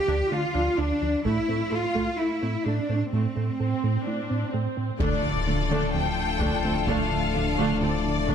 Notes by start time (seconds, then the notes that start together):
Already playing: G4
0.08 D2 D3 D4
0.31 D3 A3 D4 F4
0.55 D2 F3 D4
0.78 D2 D3 D4
1.02 D2 F3 D4
1.25 A2 A3 E4, taiko
1.48 A2 A3 C4
1.72 A2 A3 F4 A4
1.95 A2 A3, taiko
2.18 A3 E4
2.42 A2 A3 C4
2.66 A2 A3 D4
2.89 A2 A3 C4
3.13 A2 A3 C4
3.36 A2 A3 C4
3.60 A2 C4 A4
3.84 A2 A3
4.06 A3 D4 E4
4.30 A2 C4
4.53 A2 A3 C4
4.77 A2 C4
5.00 D1 D2 A2 D3 F3 A3 D4 F4 A4 D5, taiko, impact
5.24 D2
5.47 D2 D3 A3 D4
5.71 D2 D3 A3 D4
5.94 D2 D3 F3 A3 C4 G5
6.18 D3
6.41 D2 D3 A3 D4, taiko
6.65 D2 D3 A3 C4
6.87 D2 D3 A3 D4 F5, taiko
7.12 D2
7.35 D2 D3 A3 D4
7.58 D2 D3 A3 D4
7.81 D2 D3 F3 A3 C4 D5
8.06 D3
8.28 D2 D3 A3 D4, taiko